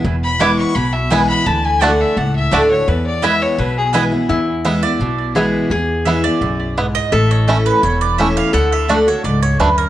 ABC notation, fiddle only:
X:1
M:4/4
L:1/8
Q:1/4=170
K:Emix
V:1 name="Fiddle"
z b d' c' b e g b | a g f e f e d c | B d e c B G z2 | z8 |
z8 | z8 | z8 |]